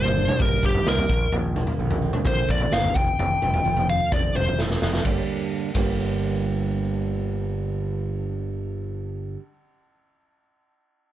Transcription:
0.00 0.27 G1 medium
0.00 0.63 G2 medium
0.00 0.39 G3 medium
0.00 0.85 A#3 medium
0.00 0.17 D4 medium
0.00 0.40 C5 loud
0.05 floor tom medium
0.17 0.62 D4 medium
0.28 mid tom medium
0.39 0.57 G1 medium
0.39 1.10 G3 medium
0.39 0.63 A#4 medium
0.39 kick loud
0.39 floor tom medium
0.63 0.80 G1 medium
0.63 1.10 D4 medium
0.63 0.87 G4 medium
0.63 kick medium
0.74 floor tom medium
0.86 1.03 C2 medium
0.86 1.10 A#3 medium
0.86 1.33 A#4 medium
0.86 snare medium
0.98 floor tom medium
1.09 1.26 A#1 medium
1.09 1.31 A#2 medium
1.09 kick medium
1.32 1.66 A#1 medium
1.32 2.49 A#2 medium
1.32 floor tom medium
1.56 2.71 A#3 medium
1.56 mid tom medium
1.67 floor tom medium
1.79 2.12 A#1 medium
1.79 2.25 D3 medium
1.91 floor tom medium
2.02 2.47 C4 medium
2.13 mid tom medium
2.25 2.42 A#1 medium
2.25 2.96 D3 medium
2.25 2.49 C5 medium
2.25 kick medium
2.25 floor tom medium
2.48 2.66 A#1 medium
2.48 2.95 C4 medium
2.48 2.73 D5 medium
2.48 kick medium
2.60 floor tom medium
2.72 2.89 G1 medium
2.72 2.96 A#3 medium
2.72 2.97 F5 medium
2.72 snare medium
2.84 floor tom medium
2.95 3.12 F1 medium
2.95 3.18 F2 medium
2.95 3.86 G5 medium
2.95 kick medium
3.19 3.35 F1 medium
3.19 floor tom medium
3.42 3.59 F1 medium
3.42 4.57 A3 medium
3.42 mid tom medium
3.54 floor tom medium
3.65 3.99 F1 medium
3.65 4.11 F3 medium
3.77 floor tom medium
3.89 4.34 C4 medium
3.89 4.12 F5 medium
4.12 4.29 F1 medium
4.12 4.80 F3 medium
4.12 4.35 D5 medium
4.12 kick loud
4.12 floor tom medium
4.35 4.52 F1 medium
4.35 5.05 C4 medium
4.35 4.58 C5 medium
4.35 mid tom medium
4.47 floor tom medium
4.59 4.75 F1 medium
4.59 5.05 A3 medium
4.59 snare medium
4.71 snare soft
4.81 4.99 F1 medium
4.81 5.05 F3 medium
4.81 snare medium
4.94 snare medium
5.03 5.18 G1 medium
5.03 5.70 G2 medium
5.03 5.70 D3 medium
5.03 5.70 G3 medium
5.03 5.70 A#3 medium
5.03 5.70 D4 medium
5.03 5.70 G4 medium
5.03 kick medium
5.03 ride medium
5.74 9.36 G1 medium
5.74 9.38 G2 medium
5.74 9.39 D3 medium
5.74 9.40 G3 medium
5.74 9.41 A#3 medium
5.74 9.42 D4 medium
5.74 kick medium
5.74 ride medium
5.78 9.43 G4 medium

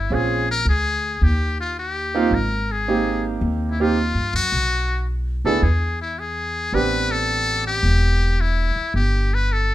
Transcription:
0.00 0.16 E4 medium
0.10 0.62 A#1 medium
0.10 0.44 C4 medium
0.10 0.45 C#4 soft
0.10 0.45 F4 medium
0.10 0.45 G#4 medium
0.10 0.50 G#4 medium
0.51 0.66 A#4 medium
0.65 1.17 D2 medium
0.65 1.25 G#4 medium
1.21 2.27 D#2 medium
1.21 1.60 G4 medium
1.61 1.76 F4 medium
1.79 2.36 G4 medium
2.15 2.30 A#3 medium
2.15 2.30 C4 medium
2.15 2.30 D#4 medium
2.15 2.31 F4 medium
2.31 3.37 G#1 medium
2.31 2.73 A#4 medium
2.72 3.25 G#4 medium
2.88 3.72 A#3 medium
2.88 3.72 C4 medium
2.88 3.73 D#4 medium
2.88 3.73 G4 medium
3.41 4.11 D#2 medium
3.71 3.83 E4 medium
3.80 3.96 A#3 medium
3.80 3.96 C4 medium
3.80 3.96 D#4 medium
3.80 4.35 F4 medium
3.80 3.96 G4 medium
4.15 4.32 G2 medium
4.33 4.51 F#2 medium
4.33 5.04 F#4 medium
4.52 5.40 B1 medium
5.45 5.61 D2 medium
5.45 5.61 B3 medium
5.45 5.61 D4 medium
5.45 5.61 E4 medium
5.45 5.61 G#4 medium
5.45 5.64 A4 medium
5.62 6.68 E2 medium
5.62 6.00 G#4 medium
6.02 6.21 E4 medium
6.19 6.76 G#4 medium
6.73 7.79 A1 medium
6.73 8.28 B3 medium
6.73 8.28 C4 medium
6.73 8.28 D4 medium
6.73 8.28 G4 medium
6.73 7.13 B4 loud
7.11 7.66 A4 medium
7.67 8.42 G4 medium
7.83 8.71 E1 medium
8.41 8.95 E4 medium
8.76 muted upright bass stroke soft
8.94 9.74 G1 medium
8.94 9.36 G4 medium
9.34 9.54 B4 medium
9.52 9.74 A4 medium

